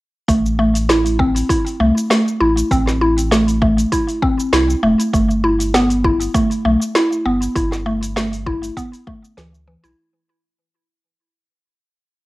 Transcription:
0.28 1.43 A1 medium
0.28 0.44 A3 medium
0.28 kick loud
0.28 open hi-hat medium
0.28 shaker medium
0.46 shaker soft
0.59 0.74 A3 medium
0.75 open hi-hat soft
0.75 shaker medium
0.89 1.18 E4 medium
0.89 snare loud
0.89 open hi-hat medium
0.89 shaker medium
1.06 open hi-hat soft
1.06 shaker soft
1.19 1.48 C4 medium
1.19 kick loud
1.36 open hi-hat soft
1.36 shaker medium
1.49 1.65 E4 medium
1.49 kick loud
1.49 open hi-hat medium
1.49 shaker medium
1.67 open hi-hat soft
1.67 shaker soft
1.80 1.92 C2 medium
1.80 1.95 A3 medium
1.98 shaker medium
2.10 2.26 A3 medium
2.10 snare loud
2.10 open hi-hat medium
2.10 shaker medium
2.28 shaker soft
2.40 2.63 A1 medium
2.40 2.69 E4 medium
2.57 open hi-hat soft
2.57 shaker medium
2.71 3.86 A1 medium
2.71 3.00 C4 medium
2.71 kick loud
2.71 open hi-hat medium
2.71 shaker medium
2.87 snare soft
2.87 shaker soft
3.01 3.17 E4 medium
3.18 open hi-hat soft
3.18 shaker medium
3.31 3.47 A3 medium
3.31 snare loud
3.31 open hi-hat medium
3.31 shaker medium
3.48 open hi-hat soft
3.48 shaker soft
3.62 3.77 A3 medium
3.62 kick loud
3.78 open hi-hat soft
3.78 shaker medium
3.92 4.21 E4 medium
3.92 kick medium
3.92 open hi-hat medium
3.92 shaker medium
4.09 open hi-hat soft
4.09 shaker soft
4.22 4.51 C4 medium
4.22 kick loud
4.40 shaker medium
4.53 4.75 C2 medium
4.53 4.68 E4 medium
4.53 snare loud
4.53 open hi-hat medium
4.53 shaker medium
4.70 shaker soft
4.83 4.95 E1 medium
4.83 4.98 A3 medium
5.00 open hi-hat soft
5.00 shaker medium
5.13 6.28 G1 medium
5.13 5.29 A3 medium
5.13 kick loud
5.13 open hi-hat medium
5.13 shaker medium
5.31 shaker soft
5.44 5.73 E4 medium
5.60 open hi-hat soft
5.60 shaker medium
5.74 6.03 B3 medium
5.74 snare loud
5.74 open hi-hat medium
5.74 shaker medium
5.90 open hi-hat soft
5.90 shaker soft
6.04 6.20 E4 medium
6.04 kick loud
6.21 open hi-hat soft
6.21 shaker medium
6.34 6.50 A3 medium
6.34 kick loud
6.34 open hi-hat medium
6.34 shaker medium
6.51 open hi-hat soft
6.51 shaker soft
6.65 6.77 B1 medium
6.65 6.80 A3 medium
6.82 shaker medium
6.95 7.24 E4 medium
6.95 snare loud
6.95 open hi-hat medium
6.95 shaker medium
7.12 shaker soft
7.25 7.48 G1 medium
7.25 7.54 B3 medium
7.42 open hi-hat soft
7.42 shaker medium
7.55 8.71 G1 medium
7.55 7.71 E4 medium
7.55 kick loud
7.55 open hi-hat medium
7.55 shaker medium
7.72 snare soft
7.72 shaker soft
7.86 8.01 A3 medium
8.03 open hi-hat soft
8.03 shaker medium
8.16 8.32 A3 medium
8.16 snare loud
8.16 open hi-hat medium
8.16 shaker medium
8.33 open hi-hat soft
8.33 shaker soft
8.46 8.76 E4 medium
8.46 kick loud
8.63 open hi-hat soft
8.63 shaker medium
8.77 8.91 B3 medium
8.77 kick medium
8.77 open hi-hat medium
8.77 shaker medium
8.93 open hi-hat soft
8.93 shaker soft
9.07 9.22 A3 medium
9.07 kick loud
9.25 shaker medium
9.37 9.77 D2 loud
9.37 9.47 E3 medium
9.37 snare loud
9.37 open hi-hat medium
9.37 shaker medium
9.55 shaker soft
9.68 9.77 E3 medium
9.84 9.94 B1 medium
9.84 9.97 E4 loud
9.84 open hi-hat soft
9.84 shaker medium

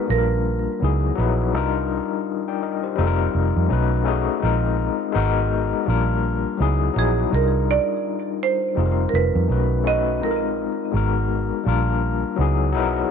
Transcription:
0.00 0.10 D#4 medium
0.00 0.10 A#4 medium
0.00 0.10 B4 medium
0.07 0.66 A#1 medium
0.07 0.70 G3 medium
0.07 0.71 A#3 medium
0.07 0.71 D4 medium
0.07 0.72 F4 medium
0.07 1.14 A#4 medium
0.12 0.18 A4 medium
0.18 0.76 A#4 medium
0.80 1.10 C#2 medium
0.80 1.11 F#3 medium
0.80 1.12 B3 medium
0.80 1.12 D#4 medium
0.80 1.13 E4 medium
0.84 1.14 G#4 medium
1.15 1.54 A#1 medium
1.15 1.47 F#3 medium
1.15 1.48 B3 medium
1.15 1.48 D#4 medium
1.19 1.49 E4 medium
1.19 1.50 B4 medium
1.52 1.99 C2 medium
1.52 2.75 G3 medium
1.52 2.76 D4 medium
1.52 2.76 D#4 medium
1.52 2.77 F4 medium
1.57 2.27 A#4 medium
2.48 2.61 D5 medium
2.48 2.61 G5 medium
2.63 2.83 A#4 medium
2.63 2.82 D#5 medium
2.83 3.18 G4 medium
2.83 3.17 C5 medium
2.96 3.26 F1 medium
2.96 3.59 G3 medium
2.96 3.60 C4 medium
2.96 3.60 D#4 medium
2.96 3.61 F4 medium
3.01 3.07 A4 medium
3.07 3.65 A#4 loud
3.35 3.51 F1 medium
3.56 3.67 F2 medium
3.68 4.27 B1 medium
3.68 4.00 A3 medium
3.68 4.00 C#4 medium
3.68 4.01 D#4 medium
3.68 4.02 F#4 medium
3.72 4.02 B4 medium
4.04 4.36 A3 medium
4.04 4.36 C#4 medium
4.04 4.37 D#4 medium
4.04 4.38 F#4 medium
4.08 4.38 G#4 medium
4.40 4.88 A#1 medium
4.40 5.11 G#3 medium
4.40 5.14 C4 medium
4.40 5.13 D#4 medium
4.40 5.15 F4 medium
4.45 5.15 A#4 medium
5.12 5.72 G#1 medium
5.12 5.76 G#3 medium
5.12 5.76 B3 medium
5.12 5.77 D#4 medium
5.12 5.78 F#4 medium
5.17 5.78 A#4 medium
5.85 6.44 A#1 medium
5.85 6.48 G3 medium
5.85 6.49 A#3 medium
5.85 6.49 D4 medium
5.85 6.50 F4 medium
5.90 6.51 A#4 medium
6.57 6.88 C#2 medium
6.57 6.89 F#3 medium
6.57 6.90 B3 medium
6.57 6.90 D#4 medium
6.57 6.91 E4 medium
6.62 6.91 G#4 medium
6.94 7.24 A#1 medium
6.94 7.25 F#3 medium
6.94 7.26 B3 medium
6.94 7.27 D#4 medium
6.94 7.27 E4 medium
6.98 7.28 G#4 medium
6.98 7.34 G#4 medium
7.30 7.77 C2 medium
7.30 8.53 G3 medium
7.30 8.54 D4 medium
7.30 8.55 D#4 medium
7.30 8.55 F4 medium
7.35 7.66 A#4 medium
7.35 8.56 A#4 medium
7.71 8.43 D5 medium
8.43 9.10 C5 medium
8.75 9.05 F1 medium
8.75 9.38 G3 medium
8.75 9.38 C4 medium
8.75 9.39 D#4 medium
8.75 9.39 F4 medium
8.80 8.85 G#4 medium
8.86 9.43 A#4 medium
9.09 9.13 A#4 medium
9.13 9.30 F1 medium
9.13 9.88 B4 medium
9.35 9.46 F2 loud
9.47 10.21 B1 medium
9.47 9.79 A3 medium
9.47 9.79 C#4 medium
9.47 9.80 D#4 medium
9.47 9.81 F#4 medium
9.52 9.81 B4 medium
9.83 10.15 A3 medium
9.83 10.16 C#4 medium
9.83 10.16 D#4 medium
9.83 10.17 F#4 medium
9.83 10.23 D#5 medium
9.88 10.17 B4 medium
10.20 10.66 A#1 medium
10.20 10.91 G#3 medium
10.20 10.93 C4 medium
10.20 10.93 D#4 medium
10.20 10.94 F4 medium
10.20 12.71 A#4 medium
10.25 10.30 A4 medium
10.31 10.95 A#4 medium
10.92 11.50 G#1 medium
10.92 11.55 G#3 medium
10.92 11.55 B3 medium
10.92 11.56 D#4 medium
10.92 11.56 F#4 medium
10.96 11.57 A#4 medium
11.64 12.23 A#1 medium
11.64 12.27 G3 medium
11.64 12.27 A#3 medium
11.64 12.28 D4 medium
11.64 12.29 F4 medium
11.69 12.29 A#4 medium
12.36 12.75 C#2 medium
12.36 12.68 F#3 medium
12.36 12.68 B3 medium
12.36 12.69 D#4 medium
12.36 12.70 E4 medium
12.41 12.70 G#4 medium
12.72 13.02 B1 medium
12.72 13.04 F#3 medium
12.72 13.05 B3 medium
12.72 13.05 D#4 medium
12.72 13.06 E4 medium
12.77 13.06 A#4 medium

